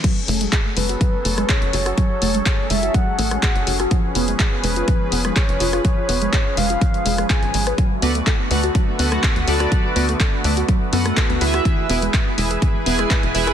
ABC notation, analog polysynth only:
X:1
M:4/4
L:1/8
Q:1/4=124
K:F#m
V:1 name="Analog polysynth"
z8 | z8 | z8 | z8 |
z [FABd] z [FABd] z [FABf]2 [FABd]- | [FABd] [FABd] z [FABd] z [FABf]2 [EGBe]- | [EGBe] [EGBe] z [EGBe] z [EGBg]2 [EGBe] |]